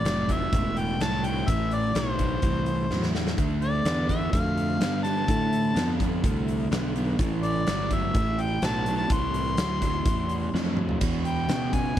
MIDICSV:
0, 0, Header, 1, 5, 480
1, 0, Start_track
1, 0, Key_signature, 0, "minor"
1, 0, Tempo, 476569
1, 1486, Time_signature, 4, 2, 24, 8
1, 12081, End_track
2, 0, Start_track
2, 0, Title_t, "Harmonica"
2, 0, Program_c, 0, 22
2, 0, Note_on_c, 0, 74, 85
2, 321, Note_on_c, 0, 76, 92
2, 336, Note_off_c, 0, 74, 0
2, 781, Note_on_c, 0, 79, 88
2, 796, Note_off_c, 0, 76, 0
2, 1029, Note_on_c, 0, 81, 97
2, 1044, Note_off_c, 0, 79, 0
2, 1262, Note_on_c, 0, 79, 89
2, 1277, Note_off_c, 0, 81, 0
2, 1496, Note_on_c, 0, 76, 88
2, 1511, Note_off_c, 0, 79, 0
2, 1747, Note_on_c, 0, 74, 80
2, 1762, Note_off_c, 0, 76, 0
2, 1973, Note_on_c, 0, 72, 81
2, 1988, Note_off_c, 0, 74, 0
2, 3166, Note_off_c, 0, 72, 0
2, 3642, Note_on_c, 0, 74, 76
2, 4111, Note_on_c, 0, 76, 79
2, 4126, Note_off_c, 0, 74, 0
2, 4342, Note_off_c, 0, 76, 0
2, 4348, Note_on_c, 0, 77, 90
2, 5034, Note_off_c, 0, 77, 0
2, 5070, Note_on_c, 0, 81, 101
2, 5995, Note_off_c, 0, 81, 0
2, 7488, Note_on_c, 0, 74, 78
2, 7981, Note_on_c, 0, 76, 90
2, 7996, Note_off_c, 0, 74, 0
2, 8468, Note_on_c, 0, 79, 85
2, 8484, Note_off_c, 0, 76, 0
2, 8709, Note_on_c, 0, 81, 94
2, 8724, Note_off_c, 0, 79, 0
2, 9018, Note_off_c, 0, 81, 0
2, 9035, Note_on_c, 0, 81, 84
2, 9171, Note_off_c, 0, 81, 0
2, 9191, Note_on_c, 0, 84, 99
2, 10582, Note_off_c, 0, 84, 0
2, 11350, Note_on_c, 0, 79, 80
2, 11817, Note_on_c, 0, 80, 90
2, 11832, Note_off_c, 0, 79, 0
2, 12081, Note_off_c, 0, 80, 0
2, 12081, End_track
3, 0, Start_track
3, 0, Title_t, "Overdriven electric guitar"
3, 0, Program_c, 1, 29
3, 49, Note_on_c, 1, 45, 83
3, 51, Note_on_c, 1, 54, 93
3, 265, Note_off_c, 1, 45, 0
3, 266, Note_off_c, 1, 54, 0
3, 290, Note_on_c, 1, 45, 75
3, 294, Note_on_c, 1, 54, 75
3, 505, Note_off_c, 1, 45, 0
3, 507, Note_off_c, 1, 54, 0
3, 527, Note_on_c, 1, 45, 69
3, 534, Note_on_c, 1, 52, 77
3, 958, Note_off_c, 1, 45, 0
3, 962, Note_off_c, 1, 52, 0
3, 1012, Note_on_c, 1, 45, 76
3, 1017, Note_on_c, 1, 54, 87
3, 1225, Note_off_c, 1, 45, 0
3, 1227, Note_off_c, 1, 54, 0
3, 1247, Note_on_c, 1, 45, 72
3, 1251, Note_on_c, 1, 54, 75
3, 1462, Note_off_c, 1, 45, 0
3, 1464, Note_off_c, 1, 54, 0
3, 1485, Note_on_c, 1, 45, 79
3, 1489, Note_on_c, 1, 52, 90
3, 1916, Note_off_c, 1, 45, 0
3, 1918, Note_off_c, 1, 52, 0
3, 1960, Note_on_c, 1, 45, 80
3, 1965, Note_on_c, 1, 54, 85
3, 2178, Note_off_c, 1, 45, 0
3, 2180, Note_off_c, 1, 54, 0
3, 2198, Note_on_c, 1, 45, 68
3, 2206, Note_on_c, 1, 54, 85
3, 2416, Note_off_c, 1, 45, 0
3, 2420, Note_off_c, 1, 54, 0
3, 2445, Note_on_c, 1, 45, 75
3, 2446, Note_on_c, 1, 52, 81
3, 2875, Note_off_c, 1, 45, 0
3, 2876, Note_off_c, 1, 52, 0
3, 2933, Note_on_c, 1, 45, 67
3, 2938, Note_on_c, 1, 54, 77
3, 3143, Note_off_c, 1, 45, 0
3, 3145, Note_off_c, 1, 54, 0
3, 3161, Note_on_c, 1, 45, 63
3, 3163, Note_on_c, 1, 54, 72
3, 3377, Note_off_c, 1, 45, 0
3, 3378, Note_off_c, 1, 54, 0
3, 3406, Note_on_c, 1, 50, 77
3, 3414, Note_on_c, 1, 57, 84
3, 3835, Note_off_c, 1, 50, 0
3, 3839, Note_off_c, 1, 57, 0
3, 3878, Note_on_c, 1, 50, 74
3, 3887, Note_on_c, 1, 59, 80
3, 4095, Note_off_c, 1, 50, 0
3, 4099, Note_off_c, 1, 59, 0
3, 4119, Note_on_c, 1, 50, 72
3, 4126, Note_on_c, 1, 59, 74
3, 4335, Note_off_c, 1, 50, 0
3, 4339, Note_off_c, 1, 59, 0
3, 4361, Note_on_c, 1, 50, 70
3, 4366, Note_on_c, 1, 57, 78
3, 4792, Note_off_c, 1, 50, 0
3, 4795, Note_off_c, 1, 57, 0
3, 4836, Note_on_c, 1, 50, 81
3, 4842, Note_on_c, 1, 59, 83
3, 5054, Note_off_c, 1, 50, 0
3, 5057, Note_off_c, 1, 59, 0
3, 5084, Note_on_c, 1, 50, 68
3, 5093, Note_on_c, 1, 59, 81
3, 5298, Note_off_c, 1, 50, 0
3, 5302, Note_off_c, 1, 59, 0
3, 5312, Note_on_c, 1, 50, 77
3, 5315, Note_on_c, 1, 57, 84
3, 5748, Note_off_c, 1, 50, 0
3, 5750, Note_off_c, 1, 57, 0
3, 5789, Note_on_c, 1, 50, 84
3, 5789, Note_on_c, 1, 59, 86
3, 6011, Note_off_c, 1, 50, 0
3, 6011, Note_off_c, 1, 59, 0
3, 6035, Note_on_c, 1, 50, 69
3, 6042, Note_on_c, 1, 59, 75
3, 6254, Note_off_c, 1, 50, 0
3, 6258, Note_off_c, 1, 59, 0
3, 6283, Note_on_c, 1, 50, 78
3, 6286, Note_on_c, 1, 57, 79
3, 6715, Note_off_c, 1, 50, 0
3, 6716, Note_off_c, 1, 57, 0
3, 6762, Note_on_c, 1, 59, 84
3, 6763, Note_on_c, 1, 50, 72
3, 6978, Note_off_c, 1, 59, 0
3, 6979, Note_off_c, 1, 50, 0
3, 7007, Note_on_c, 1, 50, 74
3, 7007, Note_on_c, 1, 59, 75
3, 7221, Note_off_c, 1, 50, 0
3, 7221, Note_off_c, 1, 59, 0
3, 7247, Note_on_c, 1, 45, 78
3, 7247, Note_on_c, 1, 52, 78
3, 7678, Note_off_c, 1, 45, 0
3, 7678, Note_off_c, 1, 52, 0
3, 7726, Note_on_c, 1, 45, 83
3, 7731, Note_on_c, 1, 54, 93
3, 7941, Note_off_c, 1, 45, 0
3, 7944, Note_off_c, 1, 54, 0
3, 7959, Note_on_c, 1, 45, 71
3, 7966, Note_on_c, 1, 54, 81
3, 8178, Note_off_c, 1, 45, 0
3, 8181, Note_off_c, 1, 54, 0
3, 8198, Note_on_c, 1, 45, 75
3, 8206, Note_on_c, 1, 52, 78
3, 8635, Note_off_c, 1, 45, 0
3, 8638, Note_off_c, 1, 52, 0
3, 8688, Note_on_c, 1, 45, 79
3, 8691, Note_on_c, 1, 54, 80
3, 8903, Note_off_c, 1, 45, 0
3, 8905, Note_off_c, 1, 54, 0
3, 8938, Note_on_c, 1, 45, 69
3, 8946, Note_on_c, 1, 54, 80
3, 9149, Note_off_c, 1, 45, 0
3, 9153, Note_off_c, 1, 54, 0
3, 9178, Note_on_c, 1, 45, 77
3, 9184, Note_on_c, 1, 52, 93
3, 9606, Note_off_c, 1, 45, 0
3, 9609, Note_off_c, 1, 52, 0
3, 9647, Note_on_c, 1, 45, 73
3, 9648, Note_on_c, 1, 54, 82
3, 9864, Note_off_c, 1, 45, 0
3, 9865, Note_off_c, 1, 54, 0
3, 9889, Note_on_c, 1, 45, 72
3, 9892, Note_on_c, 1, 54, 81
3, 10106, Note_off_c, 1, 45, 0
3, 10107, Note_off_c, 1, 54, 0
3, 10123, Note_on_c, 1, 45, 70
3, 10130, Note_on_c, 1, 52, 83
3, 10560, Note_off_c, 1, 45, 0
3, 10563, Note_off_c, 1, 52, 0
3, 10611, Note_on_c, 1, 45, 70
3, 10615, Note_on_c, 1, 54, 78
3, 10827, Note_off_c, 1, 45, 0
3, 10829, Note_off_c, 1, 54, 0
3, 10848, Note_on_c, 1, 45, 68
3, 10852, Note_on_c, 1, 54, 71
3, 11066, Note_off_c, 1, 45, 0
3, 11068, Note_off_c, 1, 54, 0
3, 11093, Note_on_c, 1, 40, 70
3, 11098, Note_on_c, 1, 47, 85
3, 11525, Note_off_c, 1, 40, 0
3, 11528, Note_off_c, 1, 47, 0
3, 11574, Note_on_c, 1, 40, 75
3, 11579, Note_on_c, 1, 49, 78
3, 11790, Note_off_c, 1, 40, 0
3, 11792, Note_off_c, 1, 49, 0
3, 11817, Note_on_c, 1, 40, 77
3, 11821, Note_on_c, 1, 49, 79
3, 12031, Note_off_c, 1, 40, 0
3, 12034, Note_off_c, 1, 49, 0
3, 12081, End_track
4, 0, Start_track
4, 0, Title_t, "Fingered electric bass"
4, 0, Program_c, 2, 33
4, 50, Note_on_c, 2, 29, 93
4, 514, Note_off_c, 2, 29, 0
4, 532, Note_on_c, 2, 28, 82
4, 995, Note_off_c, 2, 28, 0
4, 1013, Note_on_c, 2, 36, 85
4, 1474, Note_off_c, 2, 36, 0
4, 1489, Note_on_c, 2, 33, 81
4, 1951, Note_off_c, 2, 33, 0
4, 1965, Note_on_c, 2, 35, 90
4, 2429, Note_off_c, 2, 35, 0
4, 2444, Note_on_c, 2, 36, 88
4, 2908, Note_off_c, 2, 36, 0
4, 2927, Note_on_c, 2, 40, 87
4, 3389, Note_off_c, 2, 40, 0
4, 3408, Note_on_c, 2, 38, 79
4, 3870, Note_off_c, 2, 38, 0
4, 3877, Note_on_c, 2, 40, 88
4, 4344, Note_off_c, 2, 40, 0
4, 4360, Note_on_c, 2, 41, 80
4, 4823, Note_off_c, 2, 41, 0
4, 4829, Note_on_c, 2, 43, 86
4, 5300, Note_off_c, 2, 43, 0
4, 5321, Note_on_c, 2, 45, 85
4, 5787, Note_off_c, 2, 45, 0
4, 5797, Note_on_c, 2, 41, 92
4, 6265, Note_off_c, 2, 41, 0
4, 6281, Note_on_c, 2, 36, 87
4, 6747, Note_off_c, 2, 36, 0
4, 6762, Note_on_c, 2, 35, 94
4, 7228, Note_off_c, 2, 35, 0
4, 7248, Note_on_c, 2, 33, 81
4, 7712, Note_off_c, 2, 33, 0
4, 7721, Note_on_c, 2, 31, 92
4, 8189, Note_off_c, 2, 31, 0
4, 8206, Note_on_c, 2, 33, 88
4, 8672, Note_off_c, 2, 33, 0
4, 8684, Note_on_c, 2, 35, 90
4, 9152, Note_off_c, 2, 35, 0
4, 9165, Note_on_c, 2, 36, 80
4, 9633, Note_off_c, 2, 36, 0
4, 9650, Note_on_c, 2, 38, 91
4, 10116, Note_off_c, 2, 38, 0
4, 10128, Note_on_c, 2, 40, 78
4, 10595, Note_off_c, 2, 40, 0
4, 10613, Note_on_c, 2, 41, 88
4, 11079, Note_off_c, 2, 41, 0
4, 11092, Note_on_c, 2, 40, 86
4, 11558, Note_off_c, 2, 40, 0
4, 11565, Note_on_c, 2, 47, 94
4, 12035, Note_off_c, 2, 47, 0
4, 12081, End_track
5, 0, Start_track
5, 0, Title_t, "Drums"
5, 53, Note_on_c, 9, 42, 81
5, 62, Note_on_c, 9, 38, 106
5, 154, Note_off_c, 9, 42, 0
5, 163, Note_off_c, 9, 38, 0
5, 292, Note_on_c, 9, 36, 73
5, 296, Note_on_c, 9, 42, 64
5, 392, Note_off_c, 9, 36, 0
5, 397, Note_off_c, 9, 42, 0
5, 531, Note_on_c, 9, 36, 107
5, 532, Note_on_c, 9, 42, 86
5, 632, Note_off_c, 9, 36, 0
5, 633, Note_off_c, 9, 42, 0
5, 772, Note_on_c, 9, 42, 62
5, 872, Note_off_c, 9, 42, 0
5, 1012, Note_on_c, 9, 42, 85
5, 1021, Note_on_c, 9, 38, 99
5, 1113, Note_off_c, 9, 42, 0
5, 1122, Note_off_c, 9, 38, 0
5, 1141, Note_on_c, 9, 38, 31
5, 1242, Note_off_c, 9, 38, 0
5, 1250, Note_on_c, 9, 42, 65
5, 1351, Note_off_c, 9, 42, 0
5, 1489, Note_on_c, 9, 36, 102
5, 1491, Note_on_c, 9, 42, 90
5, 1590, Note_off_c, 9, 36, 0
5, 1592, Note_off_c, 9, 42, 0
5, 1726, Note_on_c, 9, 42, 62
5, 1827, Note_off_c, 9, 42, 0
5, 1965, Note_on_c, 9, 42, 89
5, 1975, Note_on_c, 9, 38, 101
5, 2066, Note_off_c, 9, 42, 0
5, 2075, Note_off_c, 9, 38, 0
5, 2203, Note_on_c, 9, 42, 69
5, 2207, Note_on_c, 9, 36, 77
5, 2304, Note_off_c, 9, 42, 0
5, 2308, Note_off_c, 9, 36, 0
5, 2438, Note_on_c, 9, 42, 85
5, 2445, Note_on_c, 9, 36, 97
5, 2539, Note_off_c, 9, 42, 0
5, 2546, Note_off_c, 9, 36, 0
5, 2680, Note_on_c, 9, 42, 60
5, 2781, Note_off_c, 9, 42, 0
5, 2926, Note_on_c, 9, 38, 55
5, 3027, Note_off_c, 9, 38, 0
5, 3050, Note_on_c, 9, 38, 61
5, 3151, Note_off_c, 9, 38, 0
5, 3171, Note_on_c, 9, 38, 81
5, 3271, Note_off_c, 9, 38, 0
5, 3292, Note_on_c, 9, 38, 79
5, 3392, Note_off_c, 9, 38, 0
5, 3405, Note_on_c, 9, 36, 95
5, 3405, Note_on_c, 9, 42, 75
5, 3506, Note_off_c, 9, 36, 0
5, 3506, Note_off_c, 9, 42, 0
5, 3646, Note_on_c, 9, 42, 55
5, 3746, Note_off_c, 9, 42, 0
5, 3881, Note_on_c, 9, 42, 81
5, 3891, Note_on_c, 9, 38, 103
5, 3982, Note_off_c, 9, 42, 0
5, 3991, Note_off_c, 9, 38, 0
5, 4123, Note_on_c, 9, 36, 74
5, 4127, Note_on_c, 9, 42, 63
5, 4224, Note_off_c, 9, 36, 0
5, 4228, Note_off_c, 9, 42, 0
5, 4362, Note_on_c, 9, 36, 103
5, 4362, Note_on_c, 9, 42, 83
5, 4462, Note_off_c, 9, 42, 0
5, 4463, Note_off_c, 9, 36, 0
5, 4608, Note_on_c, 9, 42, 63
5, 4709, Note_off_c, 9, 42, 0
5, 4843, Note_on_c, 9, 42, 86
5, 4852, Note_on_c, 9, 38, 106
5, 4943, Note_off_c, 9, 42, 0
5, 4952, Note_off_c, 9, 38, 0
5, 5082, Note_on_c, 9, 42, 66
5, 5182, Note_off_c, 9, 42, 0
5, 5321, Note_on_c, 9, 36, 96
5, 5326, Note_on_c, 9, 42, 90
5, 5422, Note_off_c, 9, 36, 0
5, 5426, Note_off_c, 9, 42, 0
5, 5567, Note_on_c, 9, 42, 66
5, 5668, Note_off_c, 9, 42, 0
5, 5803, Note_on_c, 9, 42, 86
5, 5812, Note_on_c, 9, 38, 100
5, 5904, Note_off_c, 9, 42, 0
5, 5913, Note_off_c, 9, 38, 0
5, 6043, Note_on_c, 9, 36, 77
5, 6049, Note_on_c, 9, 42, 70
5, 6144, Note_off_c, 9, 36, 0
5, 6150, Note_off_c, 9, 42, 0
5, 6283, Note_on_c, 9, 36, 104
5, 6288, Note_on_c, 9, 42, 86
5, 6383, Note_off_c, 9, 36, 0
5, 6388, Note_off_c, 9, 42, 0
5, 6529, Note_on_c, 9, 42, 61
5, 6630, Note_off_c, 9, 42, 0
5, 6767, Note_on_c, 9, 42, 78
5, 6776, Note_on_c, 9, 38, 99
5, 6868, Note_off_c, 9, 42, 0
5, 6877, Note_off_c, 9, 38, 0
5, 7007, Note_on_c, 9, 42, 62
5, 7108, Note_off_c, 9, 42, 0
5, 7242, Note_on_c, 9, 42, 84
5, 7243, Note_on_c, 9, 36, 103
5, 7342, Note_off_c, 9, 42, 0
5, 7344, Note_off_c, 9, 36, 0
5, 7485, Note_on_c, 9, 42, 58
5, 7586, Note_off_c, 9, 42, 0
5, 7722, Note_on_c, 9, 42, 78
5, 7731, Note_on_c, 9, 38, 106
5, 7823, Note_off_c, 9, 42, 0
5, 7832, Note_off_c, 9, 38, 0
5, 7963, Note_on_c, 9, 42, 62
5, 7964, Note_on_c, 9, 36, 80
5, 8063, Note_off_c, 9, 42, 0
5, 8065, Note_off_c, 9, 36, 0
5, 8204, Note_on_c, 9, 42, 81
5, 8205, Note_on_c, 9, 36, 105
5, 8305, Note_off_c, 9, 42, 0
5, 8306, Note_off_c, 9, 36, 0
5, 8446, Note_on_c, 9, 42, 60
5, 8547, Note_off_c, 9, 42, 0
5, 8682, Note_on_c, 9, 42, 78
5, 8691, Note_on_c, 9, 38, 98
5, 8782, Note_off_c, 9, 42, 0
5, 8792, Note_off_c, 9, 38, 0
5, 8924, Note_on_c, 9, 42, 64
5, 9025, Note_off_c, 9, 42, 0
5, 9162, Note_on_c, 9, 42, 87
5, 9166, Note_on_c, 9, 36, 102
5, 9263, Note_off_c, 9, 42, 0
5, 9267, Note_off_c, 9, 36, 0
5, 9409, Note_on_c, 9, 42, 61
5, 9510, Note_off_c, 9, 42, 0
5, 9642, Note_on_c, 9, 42, 89
5, 9651, Note_on_c, 9, 38, 107
5, 9743, Note_off_c, 9, 42, 0
5, 9752, Note_off_c, 9, 38, 0
5, 9888, Note_on_c, 9, 42, 69
5, 9889, Note_on_c, 9, 36, 73
5, 9989, Note_off_c, 9, 42, 0
5, 9990, Note_off_c, 9, 36, 0
5, 10127, Note_on_c, 9, 42, 90
5, 10128, Note_on_c, 9, 36, 111
5, 10227, Note_off_c, 9, 42, 0
5, 10229, Note_off_c, 9, 36, 0
5, 10368, Note_on_c, 9, 42, 61
5, 10468, Note_off_c, 9, 42, 0
5, 10621, Note_on_c, 9, 38, 52
5, 10722, Note_off_c, 9, 38, 0
5, 10845, Note_on_c, 9, 45, 79
5, 10946, Note_off_c, 9, 45, 0
5, 10967, Note_on_c, 9, 43, 77
5, 11068, Note_off_c, 9, 43, 0
5, 11089, Note_on_c, 9, 42, 84
5, 11089, Note_on_c, 9, 49, 81
5, 11092, Note_on_c, 9, 36, 100
5, 11190, Note_off_c, 9, 42, 0
5, 11190, Note_off_c, 9, 49, 0
5, 11193, Note_off_c, 9, 36, 0
5, 11332, Note_on_c, 9, 42, 59
5, 11433, Note_off_c, 9, 42, 0
5, 11569, Note_on_c, 9, 42, 79
5, 11578, Note_on_c, 9, 38, 100
5, 11670, Note_off_c, 9, 42, 0
5, 11679, Note_off_c, 9, 38, 0
5, 11814, Note_on_c, 9, 36, 79
5, 11815, Note_on_c, 9, 42, 60
5, 11915, Note_off_c, 9, 36, 0
5, 11916, Note_off_c, 9, 42, 0
5, 12081, End_track
0, 0, End_of_file